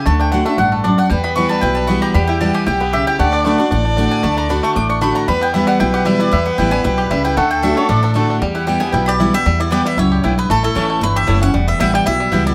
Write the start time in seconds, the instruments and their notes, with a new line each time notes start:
0.06 upright bass D2, steel-string acoustic guitar D3, five-string banjo A3, mandolin A5
0.20 five-string banjo D4, mandolin G5
0.32 five-string banjo D3, steel-string acoustic guitar D3 A3 D4 F#4, mandolin F#5
0.45 five-string banjo A3, steel-string acoustic guitar D4 F#4, mandolin E5
0.58 upright bass A1, steel-string acoustic guitar G2, five-string banjo D4, mandolin F#5
0.72 five-string banjo A3, mandolin A4
0.84 steel-string acoustic guitar F#2, five-string banjo D4, mandolin D5
0.98 five-string banjo D4, mandolin F#5
1.10 upright bass E2, steel-string acoustic guitar E2, five-string banjo G3, fiddle B4, mandolin G5
1.24 five-string banjo B3, mandolin B5
1.36 steel-string acoustic guitar E3 G3 B3 E4, five-string banjo E3, mandolin C#6
1.49 five-string banjo G3, mandolin A5
1.61 upright bass B1, steel-string acoustic guitar B2, five-string banjo E4, mandolin G5
1.75 five-string banjo G3, mandolin A5
1.87 steel-string acoustic guitar E3 G3 B3 E4, five-string banjo B3, mandolin C#6
2.02 five-string banjo G4, mandolin A#5
2.14 upright bass E2, steel-string acoustic guitar E2, five-string banjo G3, fiddle G4, mandolin B5
2.27 five-string banjo E4, mandolin G5
2.41 steel-string acoustic guitar E3 G3 B3 E4, five-string banjo G3, mandolin A5
2.54 five-string banjo G4, mandolin G#5
2.67 upright bass B1, steel-string acoustic guitar B2, five-string banjo E4, mandolin G5
2.80 five-string banjo B3, mandolin B4
2.93 steel-string acoustic guitar C#3, five-string banjo G4, mandolin E5
3.07 five-string banjo E4, mandolin G5
3.19 upright bass D2, steel-string acoustic guitar D3, five-string banjo A3, fiddle D5, mandolin F#5
3.33 five-string banjo D4, mandolin D5
3.44 steel-string acoustic guitar D3 A3 D4 F#4, five-string banjo A3, mandolin B4, fiddle D5
3.58 five-string banjo D4, steel-string acoustic guitar D4 F#4, mandolin D5
3.71 upright bass A1, steel-string acoustic guitar A2, five-string banjo D4
3.85 five-string banjo D4
3.97 steel-string acoustic guitar D3 A3 D4 F#4, five-string banjo D4
4.11 five-string banjo D4, mandolin G#5
4.23 upright bass D2, steel-string acoustic guitar D3, five-string banjo A3, mandolin A5
4.37 five-string banjo D4, mandolin A#5
4.49 steel-string acoustic guitar D3 A3 D4 F#4, five-string banjo D4, mandolin B5
4.63 five-string banjo A3, mandolin C#6
4.76 upright bass A1, steel-string acoustic guitar A2, five-string banjo D4, mandolin D6
4.89 five-string banjo D4, mandolin C#6
5.01 steel-string acoustic guitar D3 A3 D4 F#4, five-string banjo A3, mandolin B5
5.15 five-string banjo D4, mandolin A#5
5.28 upright bass E2, steel-string acoustic guitar E2, five-string banjo G3, fiddle B4, mandolin B5
5.41 five-string banjo B3, mandolin G5
5.54 steel-string acoustic guitar E3 G3 B3 E4, five-string banjo E4, fiddle B4, mandolin E5
5.67 five-string banjo G3, mandolin F#5
5.80 upright bass B1, steel-string acoustic guitar B2, five-string banjo E4, mandolin G5
5.94 five-string banjo G4, mandolin F#5
6.05 steel-string acoustic guitar E3 G3 B3 E4, five-string banjo G3, mandolin E5
6.20 five-string banjo E4, mandolin D5
6.32 steel-string acoustic guitar E2, upright bass E2, five-string banjo G3, mandolin E5
6.46 five-string banjo B3, mandolin F#5
6.58 upright bass A1, steel-string acoustic guitar E3 G3 B3 E4, five-string banjo E4, mandolin G5
6.71 five-string banjo G3, steel-string acoustic guitar B3 E4, mandolin G#5
6.84 upright bass B1, steel-string acoustic guitar B2, five-string banjo E4, mandolin G5
6.98 five-string banjo G4, mandolin B4
7.11 upright bass C#2, steel-string acoustic guitar C#3, five-string banjo G3, mandolin E5
7.25 five-string banjo E4, mandolin G5
7.37 upright bass D2, steel-string acoustic guitar D3, five-string banjo A3, fiddle A4, mandolin F#5
7.51 mandolin G5
7.63 steel-string acoustic guitar D3 A3 D4 F#4, five-string banjo D4, mandolin E5
7.76 five-string banjo A3, steel-string acoustic guitar D4 F#4, mandolin C#5
7.89 upright bass A1, steel-string acoustic guitar A2, five-string banjo D4, mandolin D5
8.03 five-string banjo D4, mandolin A4
8.14 steel-string acoustic guitar D3 A3 D4 F#4, five-string banjo A3, fiddle A4
8.30 five-string banjo D4
8.40 steel-string acoustic guitar E2, upright bass E2, five-string banjo G3, fiddle G4
8.55 five-string banjo E4, mandolin F#5
8.67 steel-string acoustic guitar E3 G3 B3 E4, five-string banjo G3, mandolin G5
8.80 five-string banjo B3, steel-string acoustic guitar B3 E4, mandolin G#5
8.92 upright bass B1, steel-string acoustic guitar B2, five-string banjo E4, fiddle B4, mandolin G5
9.06 five-string banjo G4, mandolin D5 B5
9.20 steel-string acoustic guitar E3 G3 B3 E4, five-string banjo E4
9.33 steel-string acoustic guitar B3 E4, five-string banjo G4, mandolin E5
9.46 steel-string acoustic guitar E2, upright bass E2, five-string banjo G3
9.60 five-string banjo E4, mandolin D5
9.71 steel-string acoustic guitar E3 G3 B3 E4, mandolin B3 E4 B4 D5 G5, five-string banjo B3
9.85 five-string banjo G3, mandolin E5
9.97 upright bass C#2, steel-string acoustic guitar F#2, five-string banjo E4, mandolin C#5
10.12 five-string banjo G4
10.23 upright bass B1, steel-string acoustic guitar G2, mandolin B3 E4 B4 G5, five-string banjo E4
10.38 five-string banjo B3, mandolin B4
10.50 upright bass A1, steel-string acoustic guitar A2, five-string banjo A3, mandolin A4
10.63 five-string banjo E4, mandolin A4
10.75 upright bass A1, steel-string acoustic guitar E3 A3 C#4 E4, mandolin A3 E4 C#5 A5, five-string banjo C#4
10.90 five-string banjo A3
11.01 upright bass G1, steel-string acoustic guitar E2, five-string banjo E4, mandolin B4
11.16 five-string banjo G4, mandolin E5
11.27 upright bass F#1, steel-string acoustic guitar E3 A3 C#4 E4, mandolin A3 E4 C#5 A5, five-string banjo E4
11.41 five-string banjo C#4, steel-string acoustic guitar C#4 E4, mandolin F#5
11.54 upright bass E1, steel-string acoustic guitar E2, five-string banjo G3
11.68 five-string banjo B3, mandolin E5
11.79 upright bass A1, steel-string acoustic guitar E3 G3 B3 E4, mandolin B3 E4 B4 E5 G5, five-string banjo E4
11.94 five-string banjo G3, mandolin G5
12.06 upright bass B1, steel-string acoustic guitar B2, five-string banjo E4, mandolin E5
12.20 five-string banjo G3
12.31 upright bass C#2, steel-string acoustic guitar E3 G3 B3 E4, mandolin B3 E4 B4 G5, five-string banjo B3
12.47 five-string banjo E4, mandolin D5